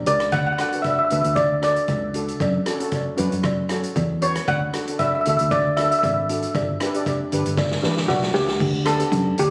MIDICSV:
0, 0, Header, 1, 5, 480
1, 0, Start_track
1, 0, Key_signature, 2, "major"
1, 0, Tempo, 516796
1, 314, Time_signature, 4, 2, 24, 8
1, 8826, End_track
2, 0, Start_track
2, 0, Title_t, "Steel pan"
2, 0, Program_c, 0, 114
2, 65, Note_on_c, 0, 74, 77
2, 300, Note_on_c, 0, 78, 92
2, 317, Note_off_c, 0, 74, 0
2, 347, Note_off_c, 0, 78, 0
2, 359, Note_on_c, 0, 78, 72
2, 422, Note_off_c, 0, 78, 0
2, 434, Note_on_c, 0, 78, 82
2, 478, Note_off_c, 0, 78, 0
2, 489, Note_on_c, 0, 78, 71
2, 554, Note_off_c, 0, 78, 0
2, 565, Note_on_c, 0, 78, 77
2, 626, Note_off_c, 0, 78, 0
2, 637, Note_on_c, 0, 78, 63
2, 714, Note_off_c, 0, 78, 0
2, 763, Note_on_c, 0, 76, 78
2, 827, Note_off_c, 0, 76, 0
2, 838, Note_on_c, 0, 76, 62
2, 907, Note_off_c, 0, 76, 0
2, 918, Note_on_c, 0, 76, 70
2, 961, Note_off_c, 0, 76, 0
2, 972, Note_on_c, 0, 76, 54
2, 1034, Note_off_c, 0, 76, 0
2, 1046, Note_on_c, 0, 76, 67
2, 1117, Note_off_c, 0, 76, 0
2, 1128, Note_on_c, 0, 76, 61
2, 1208, Note_off_c, 0, 76, 0
2, 1259, Note_on_c, 0, 74, 72
2, 1371, Note_off_c, 0, 74, 0
2, 1521, Note_on_c, 0, 74, 74
2, 1965, Note_off_c, 0, 74, 0
2, 3924, Note_on_c, 0, 73, 71
2, 4030, Note_off_c, 0, 73, 0
2, 4164, Note_on_c, 0, 78, 99
2, 4636, Note_on_c, 0, 76, 91
2, 4654, Note_off_c, 0, 78, 0
2, 4700, Note_off_c, 0, 76, 0
2, 4712, Note_on_c, 0, 76, 64
2, 4773, Note_off_c, 0, 76, 0
2, 4784, Note_on_c, 0, 76, 69
2, 4829, Note_off_c, 0, 76, 0
2, 4840, Note_on_c, 0, 76, 61
2, 4906, Note_off_c, 0, 76, 0
2, 4917, Note_on_c, 0, 76, 72
2, 4976, Note_off_c, 0, 76, 0
2, 4987, Note_on_c, 0, 76, 64
2, 5058, Note_off_c, 0, 76, 0
2, 5119, Note_on_c, 0, 74, 76
2, 5356, Note_on_c, 0, 76, 80
2, 5365, Note_off_c, 0, 74, 0
2, 5421, Note_off_c, 0, 76, 0
2, 5432, Note_on_c, 0, 76, 61
2, 5481, Note_off_c, 0, 76, 0
2, 5492, Note_on_c, 0, 76, 71
2, 5551, Note_off_c, 0, 76, 0
2, 5562, Note_on_c, 0, 76, 63
2, 5615, Note_off_c, 0, 76, 0
2, 5626, Note_on_c, 0, 76, 64
2, 5693, Note_off_c, 0, 76, 0
2, 5704, Note_on_c, 0, 76, 51
2, 5770, Note_off_c, 0, 76, 0
2, 7507, Note_on_c, 0, 66, 87
2, 7745, Note_on_c, 0, 67, 87
2, 7758, Note_off_c, 0, 66, 0
2, 8233, Note_on_c, 0, 69, 95
2, 8244, Note_off_c, 0, 67, 0
2, 8725, Note_on_c, 0, 67, 96
2, 8727, Note_off_c, 0, 69, 0
2, 8826, Note_off_c, 0, 67, 0
2, 8826, End_track
3, 0, Start_track
3, 0, Title_t, "Steel pan"
3, 0, Program_c, 1, 114
3, 57, Note_on_c, 1, 62, 63
3, 60, Note_on_c, 1, 67, 59
3, 70, Note_on_c, 1, 70, 74
3, 306, Note_off_c, 1, 62, 0
3, 307, Note_off_c, 1, 67, 0
3, 312, Note_off_c, 1, 70, 0
3, 545, Note_on_c, 1, 62, 71
3, 548, Note_on_c, 1, 66, 57
3, 556, Note_on_c, 1, 69, 76
3, 627, Note_off_c, 1, 62, 0
3, 628, Note_off_c, 1, 66, 0
3, 632, Note_off_c, 1, 69, 0
3, 675, Note_on_c, 1, 62, 61
3, 681, Note_on_c, 1, 66, 58
3, 694, Note_on_c, 1, 71, 71
3, 893, Note_off_c, 1, 62, 0
3, 896, Note_off_c, 1, 66, 0
3, 903, Note_off_c, 1, 71, 0
3, 1019, Note_on_c, 1, 62, 65
3, 1030, Note_on_c, 1, 66, 56
3, 1038, Note_on_c, 1, 71, 78
3, 1318, Note_off_c, 1, 62, 0
3, 1324, Note_off_c, 1, 66, 0
3, 1328, Note_off_c, 1, 71, 0
3, 1501, Note_on_c, 1, 62, 69
3, 1501, Note_on_c, 1, 66, 58
3, 1511, Note_on_c, 1, 69, 74
3, 1800, Note_off_c, 1, 62, 0
3, 1800, Note_off_c, 1, 66, 0
3, 1805, Note_off_c, 1, 69, 0
3, 1984, Note_on_c, 1, 62, 67
3, 1994, Note_on_c, 1, 66, 64
3, 2002, Note_on_c, 1, 69, 83
3, 2230, Note_off_c, 1, 62, 0
3, 2235, Note_off_c, 1, 66, 0
3, 2239, Note_off_c, 1, 69, 0
3, 2477, Note_on_c, 1, 61, 82
3, 2479, Note_on_c, 1, 66, 77
3, 2484, Note_on_c, 1, 69, 89
3, 2553, Note_off_c, 1, 61, 0
3, 2554, Note_off_c, 1, 66, 0
3, 2557, Note_off_c, 1, 69, 0
3, 2599, Note_on_c, 1, 61, 78
3, 2603, Note_on_c, 1, 66, 69
3, 2613, Note_on_c, 1, 69, 85
3, 2816, Note_off_c, 1, 61, 0
3, 2818, Note_off_c, 1, 66, 0
3, 2823, Note_off_c, 1, 69, 0
3, 2942, Note_on_c, 1, 61, 80
3, 2948, Note_on_c, 1, 66, 75
3, 2956, Note_on_c, 1, 71, 90
3, 3240, Note_off_c, 1, 61, 0
3, 3244, Note_off_c, 1, 66, 0
3, 3247, Note_off_c, 1, 71, 0
3, 3434, Note_on_c, 1, 61, 81
3, 3443, Note_on_c, 1, 66, 74
3, 3448, Note_on_c, 1, 69, 87
3, 3726, Note_off_c, 1, 61, 0
3, 3731, Note_off_c, 1, 66, 0
3, 3734, Note_off_c, 1, 69, 0
3, 3913, Note_on_c, 1, 61, 75
3, 3917, Note_on_c, 1, 66, 66
3, 3922, Note_on_c, 1, 71, 75
3, 4155, Note_off_c, 1, 61, 0
3, 4157, Note_off_c, 1, 66, 0
3, 4159, Note_off_c, 1, 71, 0
3, 4393, Note_on_c, 1, 62, 68
3, 4400, Note_on_c, 1, 66, 65
3, 4412, Note_on_c, 1, 69, 75
3, 4472, Note_off_c, 1, 62, 0
3, 4475, Note_off_c, 1, 66, 0
3, 4481, Note_off_c, 1, 69, 0
3, 4537, Note_on_c, 1, 62, 64
3, 4545, Note_on_c, 1, 66, 57
3, 4549, Note_on_c, 1, 69, 73
3, 4745, Note_off_c, 1, 62, 0
3, 4749, Note_off_c, 1, 66, 0
3, 4751, Note_off_c, 1, 69, 0
3, 4874, Note_on_c, 1, 62, 68
3, 4889, Note_on_c, 1, 66, 67
3, 4891, Note_on_c, 1, 69, 76
3, 5167, Note_off_c, 1, 62, 0
3, 5174, Note_off_c, 1, 66, 0
3, 5175, Note_off_c, 1, 69, 0
3, 5371, Note_on_c, 1, 62, 67
3, 5375, Note_on_c, 1, 66, 61
3, 5383, Note_on_c, 1, 69, 75
3, 5655, Note_off_c, 1, 62, 0
3, 5657, Note_off_c, 1, 66, 0
3, 5661, Note_off_c, 1, 69, 0
3, 5844, Note_on_c, 1, 62, 72
3, 5852, Note_on_c, 1, 66, 63
3, 5866, Note_on_c, 1, 69, 76
3, 6080, Note_off_c, 1, 62, 0
3, 6084, Note_off_c, 1, 66, 0
3, 6091, Note_off_c, 1, 69, 0
3, 6321, Note_on_c, 1, 62, 78
3, 6332, Note_on_c, 1, 67, 76
3, 6343, Note_on_c, 1, 71, 92
3, 6396, Note_off_c, 1, 62, 0
3, 6401, Note_off_c, 1, 67, 0
3, 6407, Note_off_c, 1, 71, 0
3, 6452, Note_on_c, 1, 62, 83
3, 6455, Note_on_c, 1, 67, 75
3, 6463, Note_on_c, 1, 74, 79
3, 6663, Note_off_c, 1, 62, 0
3, 6664, Note_off_c, 1, 67, 0
3, 6668, Note_off_c, 1, 74, 0
3, 6803, Note_on_c, 1, 62, 80
3, 6808, Note_on_c, 1, 67, 68
3, 6817, Note_on_c, 1, 71, 90
3, 7091, Note_off_c, 1, 62, 0
3, 7093, Note_off_c, 1, 67, 0
3, 7098, Note_off_c, 1, 71, 0
3, 7267, Note_on_c, 1, 62, 84
3, 7273, Note_on_c, 1, 67, 69
3, 7281, Note_on_c, 1, 71, 90
3, 7562, Note_off_c, 1, 62, 0
3, 7565, Note_off_c, 1, 67, 0
3, 7570, Note_off_c, 1, 71, 0
3, 7749, Note_on_c, 1, 62, 77
3, 7755, Note_on_c, 1, 67, 74
3, 7764, Note_on_c, 1, 73, 84
3, 7992, Note_off_c, 1, 62, 0
3, 7995, Note_off_c, 1, 67, 0
3, 8000, Note_off_c, 1, 73, 0
3, 8212, Note_on_c, 1, 59, 74
3, 8218, Note_on_c, 1, 62, 69
3, 8222, Note_on_c, 1, 67, 79
3, 8300, Note_off_c, 1, 59, 0
3, 8303, Note_off_c, 1, 62, 0
3, 8305, Note_off_c, 1, 67, 0
3, 8346, Note_on_c, 1, 59, 77
3, 8355, Note_on_c, 1, 62, 63
3, 8364, Note_on_c, 1, 67, 76
3, 8638, Note_off_c, 1, 59, 0
3, 8643, Note_off_c, 1, 62, 0
3, 8648, Note_off_c, 1, 67, 0
3, 8826, End_track
4, 0, Start_track
4, 0, Title_t, "Fingered electric bass"
4, 0, Program_c, 2, 33
4, 71, Note_on_c, 2, 37, 72
4, 288, Note_off_c, 2, 37, 0
4, 306, Note_on_c, 2, 38, 85
4, 503, Note_off_c, 2, 38, 0
4, 1040, Note_on_c, 2, 38, 82
4, 1142, Note_off_c, 2, 38, 0
4, 1160, Note_on_c, 2, 38, 86
4, 1640, Note_off_c, 2, 38, 0
4, 1751, Note_on_c, 2, 37, 94
4, 2141, Note_off_c, 2, 37, 0
4, 2235, Note_on_c, 2, 42, 83
4, 2430, Note_off_c, 2, 42, 0
4, 2965, Note_on_c, 2, 42, 77
4, 3065, Note_off_c, 2, 42, 0
4, 3089, Note_on_c, 2, 42, 80
4, 3566, Note_off_c, 2, 42, 0
4, 3677, Note_on_c, 2, 40, 97
4, 4065, Note_off_c, 2, 40, 0
4, 4164, Note_on_c, 2, 38, 87
4, 4355, Note_off_c, 2, 38, 0
4, 4895, Note_on_c, 2, 38, 78
4, 4991, Note_off_c, 2, 38, 0
4, 5014, Note_on_c, 2, 38, 86
4, 5489, Note_off_c, 2, 38, 0
4, 5602, Note_on_c, 2, 32, 92
4, 5988, Note_off_c, 2, 32, 0
4, 6083, Note_on_c, 2, 31, 91
4, 6274, Note_off_c, 2, 31, 0
4, 6806, Note_on_c, 2, 31, 77
4, 6906, Note_off_c, 2, 31, 0
4, 6938, Note_on_c, 2, 31, 88
4, 7217, Note_off_c, 2, 31, 0
4, 7278, Note_on_c, 2, 33, 82
4, 7493, Note_off_c, 2, 33, 0
4, 7514, Note_on_c, 2, 35, 78
4, 7731, Note_off_c, 2, 35, 0
4, 7763, Note_on_c, 2, 37, 76
4, 7975, Note_off_c, 2, 37, 0
4, 7995, Note_on_c, 2, 38, 105
4, 8383, Note_off_c, 2, 38, 0
4, 8471, Note_on_c, 2, 42, 114
4, 8666, Note_off_c, 2, 42, 0
4, 8723, Note_on_c, 2, 38, 101
4, 8826, Note_off_c, 2, 38, 0
4, 8826, End_track
5, 0, Start_track
5, 0, Title_t, "Drums"
5, 57, Note_on_c, 9, 42, 83
5, 150, Note_off_c, 9, 42, 0
5, 185, Note_on_c, 9, 37, 73
5, 185, Note_on_c, 9, 42, 58
5, 278, Note_off_c, 9, 37, 0
5, 278, Note_off_c, 9, 42, 0
5, 296, Note_on_c, 9, 42, 60
5, 302, Note_on_c, 9, 36, 105
5, 310, Note_on_c, 9, 56, 82
5, 389, Note_off_c, 9, 42, 0
5, 395, Note_off_c, 9, 36, 0
5, 403, Note_off_c, 9, 56, 0
5, 541, Note_on_c, 9, 37, 82
5, 541, Note_on_c, 9, 42, 79
5, 634, Note_off_c, 9, 37, 0
5, 634, Note_off_c, 9, 42, 0
5, 672, Note_on_c, 9, 42, 62
5, 765, Note_off_c, 9, 42, 0
5, 781, Note_on_c, 9, 42, 57
5, 785, Note_on_c, 9, 36, 75
5, 801, Note_on_c, 9, 56, 58
5, 874, Note_off_c, 9, 42, 0
5, 878, Note_off_c, 9, 36, 0
5, 894, Note_off_c, 9, 56, 0
5, 1024, Note_on_c, 9, 42, 76
5, 1117, Note_off_c, 9, 42, 0
5, 1154, Note_on_c, 9, 42, 58
5, 1247, Note_off_c, 9, 42, 0
5, 1262, Note_on_c, 9, 42, 58
5, 1267, Note_on_c, 9, 36, 106
5, 1277, Note_on_c, 9, 56, 71
5, 1355, Note_off_c, 9, 42, 0
5, 1359, Note_off_c, 9, 36, 0
5, 1370, Note_off_c, 9, 56, 0
5, 1510, Note_on_c, 9, 37, 80
5, 1510, Note_on_c, 9, 42, 77
5, 1603, Note_off_c, 9, 37, 0
5, 1603, Note_off_c, 9, 42, 0
5, 1636, Note_on_c, 9, 42, 51
5, 1729, Note_off_c, 9, 42, 0
5, 1744, Note_on_c, 9, 42, 56
5, 1748, Note_on_c, 9, 36, 76
5, 1760, Note_on_c, 9, 56, 64
5, 1837, Note_off_c, 9, 42, 0
5, 1841, Note_off_c, 9, 36, 0
5, 1853, Note_off_c, 9, 56, 0
5, 1988, Note_on_c, 9, 42, 82
5, 2081, Note_off_c, 9, 42, 0
5, 2121, Note_on_c, 9, 42, 60
5, 2214, Note_off_c, 9, 42, 0
5, 2230, Note_on_c, 9, 42, 56
5, 2231, Note_on_c, 9, 36, 95
5, 2246, Note_on_c, 9, 56, 77
5, 2322, Note_off_c, 9, 42, 0
5, 2324, Note_off_c, 9, 36, 0
5, 2339, Note_off_c, 9, 56, 0
5, 2471, Note_on_c, 9, 37, 81
5, 2471, Note_on_c, 9, 42, 80
5, 2564, Note_off_c, 9, 37, 0
5, 2564, Note_off_c, 9, 42, 0
5, 2602, Note_on_c, 9, 42, 61
5, 2695, Note_off_c, 9, 42, 0
5, 2708, Note_on_c, 9, 42, 55
5, 2712, Note_on_c, 9, 36, 75
5, 2733, Note_on_c, 9, 56, 55
5, 2801, Note_off_c, 9, 42, 0
5, 2805, Note_off_c, 9, 36, 0
5, 2826, Note_off_c, 9, 56, 0
5, 2949, Note_on_c, 9, 42, 72
5, 3042, Note_off_c, 9, 42, 0
5, 3083, Note_on_c, 9, 42, 55
5, 3176, Note_off_c, 9, 42, 0
5, 3190, Note_on_c, 9, 37, 74
5, 3190, Note_on_c, 9, 42, 60
5, 3194, Note_on_c, 9, 36, 110
5, 3208, Note_on_c, 9, 56, 71
5, 3283, Note_off_c, 9, 37, 0
5, 3283, Note_off_c, 9, 42, 0
5, 3287, Note_off_c, 9, 36, 0
5, 3301, Note_off_c, 9, 56, 0
5, 3428, Note_on_c, 9, 37, 76
5, 3428, Note_on_c, 9, 42, 79
5, 3521, Note_off_c, 9, 37, 0
5, 3521, Note_off_c, 9, 42, 0
5, 3561, Note_on_c, 9, 42, 53
5, 3654, Note_off_c, 9, 42, 0
5, 3675, Note_on_c, 9, 42, 58
5, 3677, Note_on_c, 9, 36, 79
5, 3683, Note_on_c, 9, 56, 62
5, 3768, Note_off_c, 9, 42, 0
5, 3769, Note_off_c, 9, 36, 0
5, 3776, Note_off_c, 9, 56, 0
5, 3917, Note_on_c, 9, 42, 76
5, 4010, Note_off_c, 9, 42, 0
5, 4044, Note_on_c, 9, 37, 74
5, 4044, Note_on_c, 9, 42, 59
5, 4137, Note_off_c, 9, 37, 0
5, 4137, Note_off_c, 9, 42, 0
5, 4157, Note_on_c, 9, 42, 54
5, 4159, Note_on_c, 9, 36, 100
5, 4160, Note_on_c, 9, 56, 80
5, 4250, Note_off_c, 9, 42, 0
5, 4252, Note_off_c, 9, 36, 0
5, 4253, Note_off_c, 9, 56, 0
5, 4398, Note_on_c, 9, 37, 85
5, 4398, Note_on_c, 9, 42, 79
5, 4491, Note_off_c, 9, 37, 0
5, 4491, Note_off_c, 9, 42, 0
5, 4527, Note_on_c, 9, 42, 66
5, 4620, Note_off_c, 9, 42, 0
5, 4634, Note_on_c, 9, 42, 60
5, 4639, Note_on_c, 9, 36, 80
5, 4645, Note_on_c, 9, 56, 64
5, 4727, Note_off_c, 9, 42, 0
5, 4732, Note_off_c, 9, 36, 0
5, 4738, Note_off_c, 9, 56, 0
5, 4880, Note_on_c, 9, 42, 80
5, 4973, Note_off_c, 9, 42, 0
5, 5004, Note_on_c, 9, 42, 67
5, 5097, Note_off_c, 9, 42, 0
5, 5118, Note_on_c, 9, 42, 62
5, 5121, Note_on_c, 9, 36, 107
5, 5127, Note_on_c, 9, 56, 74
5, 5211, Note_off_c, 9, 42, 0
5, 5213, Note_off_c, 9, 36, 0
5, 5220, Note_off_c, 9, 56, 0
5, 5359, Note_on_c, 9, 37, 78
5, 5359, Note_on_c, 9, 42, 79
5, 5452, Note_off_c, 9, 37, 0
5, 5452, Note_off_c, 9, 42, 0
5, 5494, Note_on_c, 9, 42, 60
5, 5587, Note_off_c, 9, 42, 0
5, 5601, Note_on_c, 9, 36, 75
5, 5603, Note_on_c, 9, 42, 62
5, 5607, Note_on_c, 9, 56, 64
5, 5694, Note_off_c, 9, 36, 0
5, 5696, Note_off_c, 9, 42, 0
5, 5700, Note_off_c, 9, 56, 0
5, 5844, Note_on_c, 9, 42, 82
5, 5937, Note_off_c, 9, 42, 0
5, 5967, Note_on_c, 9, 42, 59
5, 6060, Note_off_c, 9, 42, 0
5, 6080, Note_on_c, 9, 36, 94
5, 6081, Note_on_c, 9, 42, 52
5, 6087, Note_on_c, 9, 56, 74
5, 6173, Note_off_c, 9, 36, 0
5, 6174, Note_off_c, 9, 42, 0
5, 6180, Note_off_c, 9, 56, 0
5, 6319, Note_on_c, 9, 37, 89
5, 6319, Note_on_c, 9, 42, 73
5, 6412, Note_off_c, 9, 37, 0
5, 6412, Note_off_c, 9, 42, 0
5, 6449, Note_on_c, 9, 42, 60
5, 6542, Note_off_c, 9, 42, 0
5, 6560, Note_on_c, 9, 36, 77
5, 6562, Note_on_c, 9, 42, 55
5, 6565, Note_on_c, 9, 56, 67
5, 6653, Note_off_c, 9, 36, 0
5, 6655, Note_off_c, 9, 42, 0
5, 6658, Note_off_c, 9, 56, 0
5, 6799, Note_on_c, 9, 42, 72
5, 6892, Note_off_c, 9, 42, 0
5, 6925, Note_on_c, 9, 42, 57
5, 7018, Note_off_c, 9, 42, 0
5, 7033, Note_on_c, 9, 38, 56
5, 7036, Note_on_c, 9, 36, 106
5, 7044, Note_on_c, 9, 56, 82
5, 7126, Note_off_c, 9, 38, 0
5, 7128, Note_off_c, 9, 36, 0
5, 7137, Note_off_c, 9, 56, 0
5, 7164, Note_on_c, 9, 38, 60
5, 7257, Note_off_c, 9, 38, 0
5, 7275, Note_on_c, 9, 38, 67
5, 7368, Note_off_c, 9, 38, 0
5, 7403, Note_on_c, 9, 38, 57
5, 7496, Note_off_c, 9, 38, 0
5, 7510, Note_on_c, 9, 38, 80
5, 7513, Note_on_c, 9, 36, 79
5, 7522, Note_on_c, 9, 56, 67
5, 7603, Note_off_c, 9, 38, 0
5, 7606, Note_off_c, 9, 36, 0
5, 7615, Note_off_c, 9, 56, 0
5, 7641, Note_on_c, 9, 38, 75
5, 7734, Note_off_c, 9, 38, 0
5, 7746, Note_on_c, 9, 38, 93
5, 7839, Note_off_c, 9, 38, 0
5, 7873, Note_on_c, 9, 38, 82
5, 7966, Note_off_c, 9, 38, 0
5, 7991, Note_on_c, 9, 36, 106
5, 7992, Note_on_c, 9, 49, 106
5, 8084, Note_off_c, 9, 36, 0
5, 8085, Note_off_c, 9, 49, 0
5, 8225, Note_on_c, 9, 37, 90
5, 8225, Note_on_c, 9, 42, 92
5, 8317, Note_off_c, 9, 37, 0
5, 8317, Note_off_c, 9, 42, 0
5, 8355, Note_on_c, 9, 42, 68
5, 8448, Note_off_c, 9, 42, 0
5, 8469, Note_on_c, 9, 36, 85
5, 8470, Note_on_c, 9, 42, 69
5, 8562, Note_off_c, 9, 36, 0
5, 8563, Note_off_c, 9, 42, 0
5, 8709, Note_on_c, 9, 42, 89
5, 8802, Note_off_c, 9, 42, 0
5, 8826, End_track
0, 0, End_of_file